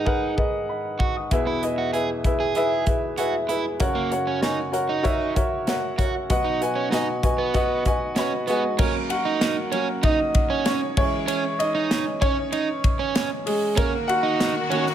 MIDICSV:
0, 0, Header, 1, 5, 480
1, 0, Start_track
1, 0, Tempo, 622407
1, 1012, Time_signature, 4, 2, 24, 8
1, 11526, End_track
2, 0, Start_track
2, 0, Title_t, "Grand piano"
2, 0, Program_c, 0, 0
2, 0, Control_c, 0, 64, 127
2, 0, Note_on_c, 0, 44, 54
2, 0, Note_on_c, 0, 51, 56
2, 0, Note_on_c, 0, 68, 66
2, 0, Note_on_c, 0, 70, 54
2, 0, Note_on_c, 0, 71, 57
2, 0, Note_on_c, 0, 75, 88
2, 0, Note_on_c, 0, 78, 70
2, 41, Note_off_c, 0, 68, 0
2, 41, Note_on_c, 0, 68, 85
2, 46, Note_off_c, 0, 70, 0
2, 46, Note_on_c, 0, 70, 75
2, 51, Note_off_c, 0, 71, 0
2, 51, Note_on_c, 0, 71, 83
2, 52, Note_off_c, 0, 78, 0
2, 52, Note_on_c, 0, 78, 92
2, 268, Note_off_c, 0, 68, 0
2, 270, Note_off_c, 0, 70, 0
2, 273, Note_off_c, 0, 71, 0
2, 273, Note_off_c, 0, 78, 0
2, 282, Note_on_c, 0, 68, 62
2, 288, Note_on_c, 0, 70, 56
2, 289, Note_on_c, 0, 71, 59
2, 296, Note_off_c, 0, 75, 0
2, 296, Note_on_c, 0, 75, 70
2, 508, Note_off_c, 0, 68, 0
2, 512, Note_off_c, 0, 70, 0
2, 512, Note_off_c, 0, 71, 0
2, 515, Note_off_c, 0, 75, 0
2, 533, Note_on_c, 0, 83, 49
2, 540, Note_on_c, 0, 75, 42
2, 761, Note_off_c, 0, 83, 0
2, 764, Note_off_c, 0, 75, 0
2, 779, Note_on_c, 0, 85, 51
2, 890, Note_off_c, 0, 85, 0
2, 900, Note_on_c, 0, 87, 51
2, 906, Note_on_c, 0, 78, 45
2, 980, Note_off_c, 0, 51, 0
2, 981, Note_off_c, 0, 44, 0
2, 1010, Note_on_c, 0, 64, 88
2, 1017, Note_on_c, 0, 47, 55
2, 1017, Note_on_c, 0, 68, 79
2, 1018, Note_on_c, 0, 40, 59
2, 1021, Note_on_c, 0, 71, 80
2, 1022, Control_c, 0, 64, 0
2, 1024, Note_on_c, 0, 76, 91
2, 1125, Note_off_c, 0, 87, 0
2, 1128, Note_off_c, 0, 78, 0
2, 1162, Control_c, 0, 64, 127
2, 1234, Note_off_c, 0, 64, 0
2, 1237, Note_off_c, 0, 68, 0
2, 1239, Note_off_c, 0, 71, 0
2, 1241, Note_off_c, 0, 76, 0
2, 1250, Note_on_c, 0, 64, 63
2, 1252, Note_on_c, 0, 68, 58
2, 1260, Note_on_c, 0, 71, 59
2, 1260, Note_on_c, 0, 75, 73
2, 1474, Note_off_c, 0, 64, 0
2, 1475, Note_off_c, 0, 68, 0
2, 1479, Note_off_c, 0, 71, 0
2, 1479, Note_off_c, 0, 75, 0
2, 1491, Note_on_c, 0, 64, 65
2, 1494, Note_on_c, 0, 68, 54
2, 1499, Note_on_c, 0, 71, 61
2, 1503, Note_on_c, 0, 76, 72
2, 1715, Note_off_c, 0, 64, 0
2, 1716, Note_off_c, 0, 68, 0
2, 1719, Note_off_c, 0, 71, 0
2, 1721, Note_off_c, 0, 76, 0
2, 1731, Note_on_c, 0, 64, 67
2, 1737, Note_on_c, 0, 68, 56
2, 1741, Note_on_c, 0, 71, 60
2, 1746, Note_on_c, 0, 76, 76
2, 1955, Note_off_c, 0, 64, 0
2, 1958, Note_off_c, 0, 68, 0
2, 1960, Note_off_c, 0, 71, 0
2, 1962, Note_off_c, 0, 76, 0
2, 1970, Note_on_c, 0, 64, 90
2, 1976, Note_on_c, 0, 68, 75
2, 1980, Note_on_c, 0, 71, 77
2, 1983, Note_on_c, 0, 76, 105
2, 2195, Note_off_c, 0, 64, 0
2, 2198, Note_off_c, 0, 68, 0
2, 2200, Note_off_c, 0, 71, 0
2, 2201, Note_off_c, 0, 76, 0
2, 2206, Note_on_c, 0, 64, 65
2, 2213, Note_on_c, 0, 68, 56
2, 2215, Note_on_c, 0, 71, 59
2, 2219, Note_on_c, 0, 76, 68
2, 2433, Note_off_c, 0, 64, 0
2, 2437, Note_off_c, 0, 68, 0
2, 2437, Note_off_c, 0, 71, 0
2, 2439, Note_off_c, 0, 76, 0
2, 2449, Note_on_c, 0, 64, 65
2, 2452, Note_on_c, 0, 68, 62
2, 2453, Note_on_c, 0, 80, 57
2, 2457, Note_on_c, 0, 71, 62
2, 2461, Note_on_c, 0, 76, 73
2, 2675, Note_off_c, 0, 64, 0
2, 2676, Note_off_c, 0, 68, 0
2, 2678, Note_off_c, 0, 80, 0
2, 2679, Note_off_c, 0, 71, 0
2, 2681, Note_off_c, 0, 76, 0
2, 2686, Note_on_c, 0, 64, 60
2, 2690, Note_on_c, 0, 68, 58
2, 2694, Note_on_c, 0, 71, 59
2, 2694, Note_on_c, 0, 76, 66
2, 2909, Note_off_c, 0, 40, 0
2, 2909, Note_off_c, 0, 47, 0
2, 2914, Note_off_c, 0, 64, 0
2, 2915, Note_off_c, 0, 68, 0
2, 2918, Note_off_c, 0, 71, 0
2, 2920, Note_off_c, 0, 76, 0
2, 2930, Note_on_c, 0, 66, 88
2, 2932, Note_on_c, 0, 70, 86
2, 2933, Note_on_c, 0, 42, 61
2, 2934, Note_on_c, 0, 49, 60
2, 2938, Note_on_c, 0, 73, 85
2, 2941, Note_on_c, 0, 78, 94
2, 2947, Control_c, 0, 64, 0
2, 3070, Control_c, 0, 64, 127
2, 3156, Note_off_c, 0, 66, 0
2, 3157, Note_off_c, 0, 70, 0
2, 3160, Note_off_c, 0, 73, 0
2, 3162, Note_off_c, 0, 78, 0
2, 3171, Note_on_c, 0, 66, 69
2, 3174, Note_on_c, 0, 70, 63
2, 3178, Note_on_c, 0, 73, 60
2, 3183, Note_on_c, 0, 78, 77
2, 3393, Note_off_c, 0, 66, 0
2, 3396, Note_off_c, 0, 70, 0
2, 3400, Note_off_c, 0, 73, 0
2, 3403, Note_off_c, 0, 78, 0
2, 3404, Note_on_c, 0, 66, 72
2, 3408, Note_on_c, 0, 70, 65
2, 3413, Note_on_c, 0, 73, 66
2, 3416, Note_on_c, 0, 80, 75
2, 3628, Note_off_c, 0, 66, 0
2, 3635, Note_off_c, 0, 70, 0
2, 3636, Note_off_c, 0, 73, 0
2, 3639, Note_off_c, 0, 80, 0
2, 3640, Note_on_c, 0, 66, 71
2, 3647, Note_on_c, 0, 70, 64
2, 3648, Note_on_c, 0, 73, 65
2, 3651, Note_on_c, 0, 78, 79
2, 3868, Note_off_c, 0, 66, 0
2, 3872, Note_off_c, 0, 70, 0
2, 3875, Note_off_c, 0, 73, 0
2, 3877, Note_off_c, 0, 78, 0
2, 3880, Note_on_c, 0, 66, 103
2, 3884, Note_on_c, 0, 70, 86
2, 3887, Note_on_c, 0, 73, 88
2, 3893, Note_on_c, 0, 76, 109
2, 4111, Note_off_c, 0, 66, 0
2, 4114, Note_off_c, 0, 70, 0
2, 4115, Note_off_c, 0, 73, 0
2, 4118, Note_off_c, 0, 76, 0
2, 4128, Note_on_c, 0, 66, 67
2, 4132, Note_on_c, 0, 70, 65
2, 4135, Note_on_c, 0, 73, 67
2, 4138, Note_on_c, 0, 76, 82
2, 4356, Note_off_c, 0, 66, 0
2, 4358, Note_off_c, 0, 70, 0
2, 4359, Note_off_c, 0, 73, 0
2, 4361, Note_off_c, 0, 76, 0
2, 4370, Note_on_c, 0, 66, 62
2, 4376, Note_on_c, 0, 70, 61
2, 4376, Note_on_c, 0, 73, 63
2, 4382, Note_on_c, 0, 78, 84
2, 4597, Note_off_c, 0, 66, 0
2, 4600, Note_off_c, 0, 70, 0
2, 4600, Note_off_c, 0, 73, 0
2, 4603, Note_off_c, 0, 78, 0
2, 4610, Note_on_c, 0, 66, 67
2, 4616, Note_on_c, 0, 70, 60
2, 4621, Note_on_c, 0, 73, 57
2, 4624, Note_on_c, 0, 78, 67
2, 4828, Note_off_c, 0, 42, 0
2, 4828, Note_off_c, 0, 49, 0
2, 4837, Note_off_c, 0, 66, 0
2, 4840, Note_off_c, 0, 70, 0
2, 4843, Note_off_c, 0, 73, 0
2, 4844, Note_off_c, 0, 78, 0
2, 4855, Note_on_c, 0, 66, 88
2, 4858, Note_on_c, 0, 71, 87
2, 4860, Note_on_c, 0, 54, 63
2, 4861, Note_on_c, 0, 47, 62
2, 4864, Note_on_c, 0, 75, 87
2, 4864, Note_on_c, 0, 78, 108
2, 4871, Control_c, 0, 64, 0
2, 5024, Control_c, 0, 64, 127
2, 5080, Note_off_c, 0, 66, 0
2, 5081, Note_off_c, 0, 71, 0
2, 5084, Note_off_c, 0, 75, 0
2, 5084, Note_off_c, 0, 78, 0
2, 5097, Note_on_c, 0, 66, 71
2, 5100, Note_on_c, 0, 71, 65
2, 5105, Note_on_c, 0, 75, 65
2, 5110, Note_on_c, 0, 80, 84
2, 5321, Note_off_c, 0, 66, 0
2, 5322, Note_off_c, 0, 71, 0
2, 5325, Note_off_c, 0, 75, 0
2, 5327, Note_off_c, 0, 80, 0
2, 5340, Note_on_c, 0, 66, 69
2, 5343, Note_on_c, 0, 71, 67
2, 5350, Note_on_c, 0, 75, 67
2, 5352, Note_on_c, 0, 80, 77
2, 5563, Note_off_c, 0, 66, 0
2, 5564, Note_off_c, 0, 71, 0
2, 5567, Note_off_c, 0, 75, 0
2, 5569, Note_off_c, 0, 80, 0
2, 5575, Note_on_c, 0, 66, 80
2, 5578, Note_on_c, 0, 71, 73
2, 5583, Note_on_c, 0, 75, 66
2, 5588, Note_on_c, 0, 80, 76
2, 5800, Note_off_c, 0, 66, 0
2, 5802, Note_off_c, 0, 71, 0
2, 5804, Note_off_c, 0, 75, 0
2, 5807, Note_off_c, 0, 80, 0
2, 5815, Note_on_c, 0, 66, 97
2, 5818, Note_on_c, 0, 71, 96
2, 5822, Note_on_c, 0, 75, 98
2, 5826, Note_on_c, 0, 78, 108
2, 6040, Note_off_c, 0, 66, 0
2, 6042, Note_off_c, 0, 71, 0
2, 6044, Note_off_c, 0, 75, 0
2, 6045, Note_off_c, 0, 78, 0
2, 6060, Note_on_c, 0, 66, 72
2, 6065, Note_on_c, 0, 71, 71
2, 6068, Note_on_c, 0, 75, 70
2, 6073, Note_on_c, 0, 80, 84
2, 6283, Note_off_c, 0, 66, 0
2, 6285, Note_off_c, 0, 71, 0
2, 6287, Note_off_c, 0, 75, 0
2, 6289, Note_off_c, 0, 80, 0
2, 6304, Note_on_c, 0, 66, 70
2, 6308, Note_on_c, 0, 71, 64
2, 6312, Note_on_c, 0, 75, 64
2, 6312, Note_on_c, 0, 83, 62
2, 6315, Note_on_c, 0, 78, 75
2, 6525, Note_off_c, 0, 66, 0
2, 6527, Note_off_c, 0, 71, 0
2, 6528, Note_off_c, 0, 75, 0
2, 6530, Note_off_c, 0, 78, 0
2, 6531, Note_off_c, 0, 83, 0
2, 6538, Note_on_c, 0, 68, 63
2, 6542, Note_on_c, 0, 66, 71
2, 6545, Note_on_c, 0, 71, 69
2, 6548, Note_on_c, 0, 78, 56
2, 6553, Note_on_c, 0, 75, 64
2, 6554, Note_on_c, 0, 56, 56
2, 6555, Note_on_c, 0, 80, 77
2, 6751, Note_off_c, 0, 47, 0
2, 6751, Note_off_c, 0, 54, 0
2, 6764, Note_off_c, 0, 66, 0
2, 6765, Note_off_c, 0, 71, 0
2, 6768, Note_off_c, 0, 78, 0
2, 6769, Note_off_c, 0, 75, 0
2, 6770, Note_off_c, 0, 80, 0
2, 6771, Note_off_c, 0, 56, 0
2, 6779, Note_on_c, 0, 70, 89
2, 6786, Note_on_c, 0, 54, 54
2, 6787, Note_off_c, 0, 68, 0
2, 6789, Note_on_c, 0, 58, 66
2, 6791, Control_c, 0, 64, 0
2, 6794, Note_on_c, 0, 61, 62
2, 6907, Control_c, 0, 64, 127
2, 7013, Note_off_c, 0, 58, 0
2, 7017, Note_on_c, 0, 78, 92
2, 7028, Note_off_c, 0, 70, 0
2, 7032, Note_on_c, 0, 66, 73
2, 7103, Note_off_c, 0, 54, 0
2, 7107, Note_off_c, 0, 61, 0
2, 7505, Note_on_c, 0, 54, 49
2, 7507, Note_on_c, 0, 58, 47
2, 7509, Note_on_c, 0, 61, 53
2, 7716, Note_off_c, 0, 66, 0
2, 7719, Note_off_c, 0, 54, 0
2, 7720, Note_off_c, 0, 58, 0
2, 7721, Note_off_c, 0, 61, 0
2, 7748, Note_on_c, 0, 75, 96
2, 7760, Note_off_c, 0, 78, 0
2, 7761, Note_on_c, 0, 63, 73
2, 8200, Note_off_c, 0, 63, 0
2, 8222, Note_on_c, 0, 73, 86
2, 8235, Note_on_c, 0, 61, 67
2, 8238, Note_off_c, 0, 75, 0
2, 8444, Note_off_c, 0, 73, 0
2, 8451, Note_off_c, 0, 61, 0
2, 8464, Note_on_c, 0, 73, 100
2, 8465, Note_on_c, 0, 52, 51
2, 8469, Control_c, 0, 64, 0
2, 8469, Note_on_c, 0, 56, 47
2, 8474, Note_on_c, 0, 64, 61
2, 8477, Note_on_c, 0, 61, 69
2, 8594, Control_c, 0, 64, 127
2, 8910, Note_off_c, 0, 73, 0
2, 8917, Note_off_c, 0, 61, 0
2, 8939, Note_on_c, 0, 75, 90
2, 8951, Note_on_c, 0, 63, 71
2, 9150, Note_off_c, 0, 52, 0
2, 9153, Note_off_c, 0, 56, 0
2, 9155, Note_off_c, 0, 64, 0
2, 9393, Note_off_c, 0, 63, 0
2, 9422, Note_on_c, 0, 73, 101
2, 9429, Note_on_c, 0, 61, 72
2, 9433, Note_off_c, 0, 75, 0
2, 10351, Note_off_c, 0, 61, 0
2, 10380, Note_on_c, 0, 68, 75
2, 10391, Note_on_c, 0, 56, 68
2, 10407, Note_off_c, 0, 73, 0
2, 10433, Note_off_c, 0, 68, 0
2, 10443, Note_off_c, 0, 56, 0
2, 10624, Note_on_c, 0, 70, 98
2, 10628, Control_c, 0, 64, 0
2, 10631, Note_on_c, 0, 58, 79
2, 10752, Control_c, 0, 64, 127
2, 10843, Note_off_c, 0, 70, 0
2, 10847, Note_off_c, 0, 58, 0
2, 10856, Note_on_c, 0, 78, 111
2, 10868, Note_on_c, 0, 66, 84
2, 11345, Note_off_c, 0, 66, 0
2, 11345, Note_on_c, 0, 51, 55
2, 11351, Note_on_c, 0, 58, 52
2, 11356, Note_on_c, 0, 66, 60
2, 11526, Note_off_c, 0, 51, 0
2, 11526, Note_off_c, 0, 58, 0
2, 11526, Note_off_c, 0, 66, 0
2, 11526, Note_off_c, 0, 78, 0
2, 11526, End_track
3, 0, Start_track
3, 0, Title_t, "Overdriven electric guitar"
3, 0, Program_c, 1, 29
3, 0, Note_on_c, 1, 63, 56
3, 264, Note_off_c, 1, 63, 0
3, 765, Note_on_c, 1, 66, 60
3, 882, Note_off_c, 1, 66, 0
3, 1132, Note_on_c, 1, 64, 63
3, 1247, Note_off_c, 1, 64, 0
3, 1372, Note_on_c, 1, 66, 48
3, 1487, Note_off_c, 1, 66, 0
3, 1491, Note_on_c, 1, 68, 62
3, 1606, Note_off_c, 1, 68, 0
3, 1851, Note_on_c, 1, 68, 62
3, 2192, Note_off_c, 1, 68, 0
3, 2452, Note_on_c, 1, 66, 71
3, 2568, Note_off_c, 1, 66, 0
3, 2689, Note_on_c, 1, 64, 67
3, 2807, Note_off_c, 1, 64, 0
3, 3046, Note_on_c, 1, 58, 63
3, 3166, Note_off_c, 1, 58, 0
3, 3294, Note_on_c, 1, 61, 56
3, 3410, Note_off_c, 1, 61, 0
3, 3415, Note_on_c, 1, 63, 70
3, 3531, Note_off_c, 1, 63, 0
3, 3772, Note_on_c, 1, 63, 68
3, 4114, Note_off_c, 1, 63, 0
3, 4612, Note_on_c, 1, 66, 69
3, 4730, Note_off_c, 1, 66, 0
3, 4970, Note_on_c, 1, 63, 68
3, 5089, Note_off_c, 1, 63, 0
3, 5209, Note_on_c, 1, 61, 55
3, 5326, Note_off_c, 1, 61, 0
3, 5329, Note_on_c, 1, 63, 77
3, 5449, Note_off_c, 1, 63, 0
3, 5693, Note_on_c, 1, 59, 73
3, 6036, Note_off_c, 1, 59, 0
3, 6296, Note_on_c, 1, 61, 81
3, 6412, Note_off_c, 1, 61, 0
3, 6534, Note_on_c, 1, 59, 72
3, 6651, Note_off_c, 1, 59, 0
3, 6775, Note_on_c, 1, 61, 88
3, 6892, Note_off_c, 1, 61, 0
3, 7135, Note_on_c, 1, 63, 71
3, 7366, Note_off_c, 1, 63, 0
3, 7493, Note_on_c, 1, 61, 70
3, 7611, Note_off_c, 1, 61, 0
3, 7735, Note_on_c, 1, 63, 87
3, 7852, Note_off_c, 1, 63, 0
3, 8097, Note_on_c, 1, 61, 78
3, 8326, Note_off_c, 1, 61, 0
3, 8695, Note_on_c, 1, 61, 105
3, 8811, Note_off_c, 1, 61, 0
3, 9059, Note_on_c, 1, 63, 65
3, 9287, Note_off_c, 1, 63, 0
3, 9418, Note_on_c, 1, 61, 76
3, 9532, Note_off_c, 1, 61, 0
3, 9659, Note_on_c, 1, 63, 80
3, 9772, Note_off_c, 1, 63, 0
3, 10020, Note_on_c, 1, 61, 75
3, 10246, Note_off_c, 1, 61, 0
3, 10615, Note_on_c, 1, 61, 104
3, 10729, Note_off_c, 1, 61, 0
3, 10974, Note_on_c, 1, 63, 77
3, 11202, Note_off_c, 1, 63, 0
3, 11337, Note_on_c, 1, 61, 78
3, 11450, Note_off_c, 1, 61, 0
3, 11526, End_track
4, 0, Start_track
4, 0, Title_t, "String section"
4, 0, Program_c, 2, 48
4, 10624, Note_on_c, 2, 51, 81
4, 10625, Note_on_c, 2, 66, 92
4, 10629, Note_on_c, 2, 58, 72
4, 11526, Note_off_c, 2, 51, 0
4, 11526, Note_off_c, 2, 58, 0
4, 11526, Note_off_c, 2, 66, 0
4, 11526, End_track
5, 0, Start_track
5, 0, Title_t, "Drums"
5, 50, Note_on_c, 9, 36, 71
5, 127, Note_off_c, 9, 36, 0
5, 291, Note_on_c, 9, 36, 66
5, 368, Note_off_c, 9, 36, 0
5, 771, Note_on_c, 9, 36, 76
5, 848, Note_off_c, 9, 36, 0
5, 1011, Note_on_c, 9, 42, 82
5, 1013, Note_on_c, 9, 36, 93
5, 1088, Note_off_c, 9, 42, 0
5, 1090, Note_off_c, 9, 36, 0
5, 1256, Note_on_c, 9, 42, 63
5, 1333, Note_off_c, 9, 42, 0
5, 1493, Note_on_c, 9, 42, 58
5, 1570, Note_off_c, 9, 42, 0
5, 1731, Note_on_c, 9, 36, 78
5, 1732, Note_on_c, 9, 42, 53
5, 1808, Note_off_c, 9, 36, 0
5, 1809, Note_off_c, 9, 42, 0
5, 1966, Note_on_c, 9, 42, 61
5, 2043, Note_off_c, 9, 42, 0
5, 2208, Note_on_c, 9, 42, 58
5, 2212, Note_on_c, 9, 36, 73
5, 2285, Note_off_c, 9, 42, 0
5, 2289, Note_off_c, 9, 36, 0
5, 2449, Note_on_c, 9, 42, 72
5, 2526, Note_off_c, 9, 42, 0
5, 2692, Note_on_c, 9, 42, 61
5, 2770, Note_off_c, 9, 42, 0
5, 2928, Note_on_c, 9, 42, 93
5, 2933, Note_on_c, 9, 36, 98
5, 3005, Note_off_c, 9, 42, 0
5, 3010, Note_off_c, 9, 36, 0
5, 3174, Note_on_c, 9, 42, 68
5, 3252, Note_off_c, 9, 42, 0
5, 3413, Note_on_c, 9, 38, 93
5, 3414, Note_on_c, 9, 42, 62
5, 3490, Note_off_c, 9, 38, 0
5, 3492, Note_off_c, 9, 42, 0
5, 3652, Note_on_c, 9, 42, 62
5, 3729, Note_off_c, 9, 42, 0
5, 3890, Note_on_c, 9, 42, 65
5, 3894, Note_on_c, 9, 36, 79
5, 3967, Note_off_c, 9, 42, 0
5, 3972, Note_off_c, 9, 36, 0
5, 4135, Note_on_c, 9, 42, 60
5, 4136, Note_on_c, 9, 36, 76
5, 4213, Note_off_c, 9, 42, 0
5, 4214, Note_off_c, 9, 36, 0
5, 4374, Note_on_c, 9, 42, 74
5, 4377, Note_on_c, 9, 38, 92
5, 4451, Note_off_c, 9, 42, 0
5, 4454, Note_off_c, 9, 38, 0
5, 4616, Note_on_c, 9, 36, 85
5, 4618, Note_on_c, 9, 42, 65
5, 4693, Note_off_c, 9, 36, 0
5, 4695, Note_off_c, 9, 42, 0
5, 4857, Note_on_c, 9, 42, 97
5, 4859, Note_on_c, 9, 36, 105
5, 4934, Note_off_c, 9, 42, 0
5, 4936, Note_off_c, 9, 36, 0
5, 5103, Note_on_c, 9, 42, 66
5, 5180, Note_off_c, 9, 42, 0
5, 5339, Note_on_c, 9, 38, 86
5, 5340, Note_on_c, 9, 42, 66
5, 5416, Note_off_c, 9, 38, 0
5, 5418, Note_off_c, 9, 42, 0
5, 5578, Note_on_c, 9, 36, 81
5, 5579, Note_on_c, 9, 42, 61
5, 5656, Note_off_c, 9, 36, 0
5, 5657, Note_off_c, 9, 42, 0
5, 5815, Note_on_c, 9, 42, 64
5, 5819, Note_on_c, 9, 36, 83
5, 5892, Note_off_c, 9, 42, 0
5, 5896, Note_off_c, 9, 36, 0
5, 6056, Note_on_c, 9, 42, 61
5, 6059, Note_on_c, 9, 36, 71
5, 6134, Note_off_c, 9, 42, 0
5, 6136, Note_off_c, 9, 36, 0
5, 6291, Note_on_c, 9, 42, 74
5, 6294, Note_on_c, 9, 38, 97
5, 6368, Note_off_c, 9, 42, 0
5, 6371, Note_off_c, 9, 38, 0
5, 6536, Note_on_c, 9, 42, 65
5, 6613, Note_off_c, 9, 42, 0
5, 6775, Note_on_c, 9, 49, 94
5, 6779, Note_on_c, 9, 36, 127
5, 6852, Note_off_c, 9, 49, 0
5, 6857, Note_off_c, 9, 36, 0
5, 7018, Note_on_c, 9, 51, 70
5, 7095, Note_off_c, 9, 51, 0
5, 7259, Note_on_c, 9, 38, 100
5, 7260, Note_on_c, 9, 51, 66
5, 7336, Note_off_c, 9, 38, 0
5, 7338, Note_off_c, 9, 51, 0
5, 7499, Note_on_c, 9, 51, 56
5, 7576, Note_off_c, 9, 51, 0
5, 7735, Note_on_c, 9, 51, 59
5, 7740, Note_on_c, 9, 36, 90
5, 7812, Note_off_c, 9, 51, 0
5, 7817, Note_off_c, 9, 36, 0
5, 7978, Note_on_c, 9, 51, 60
5, 7981, Note_on_c, 9, 36, 88
5, 8055, Note_off_c, 9, 51, 0
5, 8058, Note_off_c, 9, 36, 0
5, 8217, Note_on_c, 9, 51, 74
5, 8220, Note_on_c, 9, 38, 109
5, 8294, Note_off_c, 9, 51, 0
5, 8297, Note_off_c, 9, 38, 0
5, 8459, Note_on_c, 9, 57, 73
5, 8461, Note_on_c, 9, 36, 110
5, 8536, Note_off_c, 9, 57, 0
5, 8538, Note_off_c, 9, 36, 0
5, 8700, Note_on_c, 9, 44, 64
5, 8700, Note_on_c, 9, 51, 96
5, 8777, Note_off_c, 9, 44, 0
5, 8777, Note_off_c, 9, 51, 0
5, 8945, Note_on_c, 9, 51, 72
5, 9022, Note_off_c, 9, 51, 0
5, 9185, Note_on_c, 9, 38, 99
5, 9187, Note_on_c, 9, 51, 63
5, 9262, Note_off_c, 9, 38, 0
5, 9264, Note_off_c, 9, 51, 0
5, 9422, Note_on_c, 9, 36, 89
5, 9427, Note_on_c, 9, 51, 55
5, 9499, Note_off_c, 9, 36, 0
5, 9504, Note_off_c, 9, 51, 0
5, 9659, Note_on_c, 9, 51, 61
5, 9736, Note_off_c, 9, 51, 0
5, 9903, Note_on_c, 9, 36, 86
5, 9903, Note_on_c, 9, 51, 58
5, 9980, Note_off_c, 9, 36, 0
5, 9980, Note_off_c, 9, 51, 0
5, 10144, Note_on_c, 9, 51, 74
5, 10147, Note_on_c, 9, 38, 114
5, 10221, Note_off_c, 9, 51, 0
5, 10224, Note_off_c, 9, 38, 0
5, 10385, Note_on_c, 9, 46, 82
5, 10385, Note_on_c, 9, 51, 57
5, 10462, Note_off_c, 9, 46, 0
5, 10462, Note_off_c, 9, 51, 0
5, 10623, Note_on_c, 9, 36, 123
5, 10623, Note_on_c, 9, 44, 69
5, 10623, Note_on_c, 9, 51, 87
5, 10700, Note_off_c, 9, 36, 0
5, 10700, Note_off_c, 9, 44, 0
5, 10700, Note_off_c, 9, 51, 0
5, 10868, Note_on_c, 9, 51, 65
5, 10945, Note_off_c, 9, 51, 0
5, 11109, Note_on_c, 9, 38, 100
5, 11110, Note_on_c, 9, 51, 58
5, 11186, Note_off_c, 9, 38, 0
5, 11187, Note_off_c, 9, 51, 0
5, 11347, Note_on_c, 9, 51, 58
5, 11424, Note_off_c, 9, 51, 0
5, 11463, Note_on_c, 9, 38, 36
5, 11526, Note_off_c, 9, 38, 0
5, 11526, End_track
0, 0, End_of_file